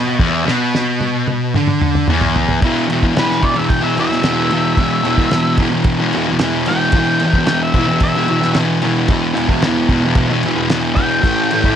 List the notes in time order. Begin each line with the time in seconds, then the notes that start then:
Already playing: B2
0.19 E2, kick, crash
0.45 B2, snare
0.75 snare
1.01 high tom
1.28 high tom
1.54 D3, mid tom
1.67 mid tom
1.81 mid tom
1.95 mid tom
2.08 E2, mid tom
2.21 floor tom
2.36 floor tom
2.48 floor tom
2.61 E2 B2 E3, kick, crash
2.88 E2 B2, crash
2.92 E3
3.03 B2 E3, kick
3.15 E2 B2 E3, snare, crash
3.19 B4
3.31 snare
3.40 E2 B2 E3 D5, kick, crash
3.55 B2 E3 E5
3.69 G5, kick, crash
3.81 E3 E5
3.86 B2
3.96 E2 B2 E3 E5, crash
4.09 B2 E3, snare
4.22 E2 B2 E3, snare, crash
4.50 E2 B2 E3, crash
4.76 E2 B2, kick, crash
4.80 E3
5.03 E2 B2 E3, crash
5.18 B2 E3, kick
5.30 E2 B2, snare, crash
5.35 E3
5.57 E2 B2, kick, crash
5.62 E3
5.71 B2 E3
5.84 kick, crash
5.99 B2 E3
6.12 E2 B2, crash
6.17 E3
6.28 E3
6.32 B2
6.39 E2 B2, snare, crash
6.43 E3
6.66 E2 B2 G5, crash
6.70 E3
6.92 E2 B2, kick, crash
6.97 E3
7.20 E2 B2, crash
7.26 E3
7.33 B2 E3, kick
7.46 E2 B2 G5, snare, crash
7.52 E3
7.63 E5
7.74 E2 B2, kick, crash
7.78 E3
7.88 E3
7.93 B2
8.00 E5, kick, crash
8.16 B2 E3
8.27 E2 B2, crash
8.31 E3
8.42 E3, snare
8.46 B2
8.54 E2 B2, snare, crash
8.60 E3
8.82 E2 B2, crash
8.86 E3
9.08 E2 B2, kick, crash
9.13 E3
9.34 E2 B2 E3, crash
9.48 B2 E3, kick
9.62 E2 B2, snare, crash
9.67 E3
9.89 E2 B2 E3, kick, crash
10.05 B2 E3
10.15 kick, crash
10.29 B2 E3
10.43 E2 B2, crash
10.48 E3
10.56 B2 E3
10.69 E2 B2 E3, snare, crash
10.95 E2 B2 E3 G5, kick, crash
11.22 A2 E3, kick, crash
11.26 A3
11.51 A2 E3 A3, crash
11.64 A3, kick
11.70 E3